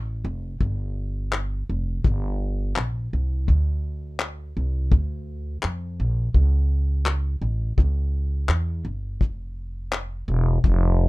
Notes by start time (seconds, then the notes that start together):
Already playing: A1
0.25 F1
0.61 G1, kick
1.33 clap
1.69 F1
2.04 G1, kick
2.76 A#1, clap
3.13 C2
3.48 D2, kick
4.20 clap
4.57 C2
4.92 D2, kick
5.63 F2, clap
6.00 A#1
6.34 C#2, kick
7.06 clap
7.42 A1
7.78 C#2, kick
8.48 E2, clap
8.85 G1
9.21 F1, kick
9.93 clap
10.28 E1
10.64 F1, kick